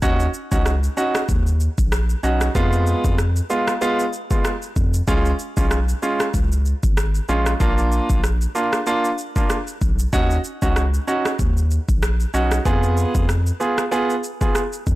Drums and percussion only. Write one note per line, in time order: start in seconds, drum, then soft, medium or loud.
0.02 kick loud
0.02 shaker medium
0.20 shaker medium
0.34 shaker medium
0.52 kick loud
0.52 shaker medium
0.66 cross-stick medium
0.66 shaker medium
0.83 shaker medium
0.97 shaker medium
1.15 cross-stick loud
1.15 shaker medium
1.29 kick medium
1.29 shaker medium
1.47 shaker medium
1.60 shaker soft
1.78 kick medium
1.78 shaker medium
1.92 cross-stick loud
1.92 shaker medium
2.10 shaker soft
2.23 shaker medium
2.41 cross-stick medium
2.41 shaker medium
2.55 kick loud
2.55 shaker medium
2.73 shaker medium
2.87 shaker medium
3.04 kick medium
3.04 shaker medium
3.18 cross-stick medium
3.18 shaker medium
3.36 shaker medium
3.50 shaker medium
3.68 cross-stick loud
3.68 shaker medium
3.81 shaker medium
3.99 shaker medium
4.13 shaker soft
4.31 kick medium
4.31 shaker medium
4.45 cross-stick loud
4.45 shaker medium
4.62 shaker soft
4.76 kick medium
4.76 shaker medium
4.94 shaker medium
5.08 kick loud
5.08 shaker medium
5.25 shaker medium
5.39 shaker medium
5.57 kick loud
5.57 shaker medium
5.71 cross-stick medium
5.71 shaker medium
5.89 shaker medium
6.03 shaker medium
6.20 cross-stick loud
6.20 shaker medium
6.34 kick medium
6.34 shaker medium
6.52 shaker medium
6.65 shaker soft
6.83 kick medium
6.83 shaker medium
6.97 cross-stick loud
6.97 shaker medium
7.15 shaker soft
7.29 shaker medium
7.46 cross-stick medium
7.46 shaker medium
7.60 kick loud
7.60 shaker medium
7.78 shaker medium
7.92 shaker medium
8.10 kick medium
8.10 shaker medium
8.24 cross-stick medium
8.24 shaker medium
8.41 shaker medium
8.55 shaker medium
8.73 cross-stick loud
8.73 shaker medium
8.87 shaker medium
9.05 shaker medium
9.18 shaker soft
9.36 kick medium
9.36 shaker medium
9.50 cross-stick medium
9.50 shaker medium
9.67 shaker soft
9.81 kick medium
9.81 shaker medium
9.99 shaker medium
10.13 kick loud
10.13 shaker medium
10.30 shaker medium
10.44 shaker medium
10.62 kick medium
10.62 shaker medium
10.76 cross-stick medium
10.76 shaker medium
10.94 shaker medium
11.08 shaker medium
11.25 cross-stick loud
11.25 shaker medium
11.39 kick medium
11.39 shaker medium
11.57 shaker medium
11.71 shaker soft
11.89 kick medium
11.89 shaker medium
12.03 cross-stick loud
12.03 shaker medium
12.20 shaker soft
12.34 shaker medium
12.51 cross-stick medium
12.51 shaker medium
12.66 kick loud
12.66 shaker medium
12.83 shaker medium
12.97 shaker medium
13.15 kick loud
13.15 shaker medium
13.29 cross-stick medium
13.29 shaker medium
13.47 shaker medium
13.60 shaker medium
13.78 cross-stick loud
13.78 shaker medium
13.92 shaker medium
14.10 shaker medium
14.24 shaker soft
14.41 kick medium
14.41 shaker medium
14.55 cross-stick medium
14.55 shaker medium
14.73 shaker soft
14.87 kick medium
14.87 shaker soft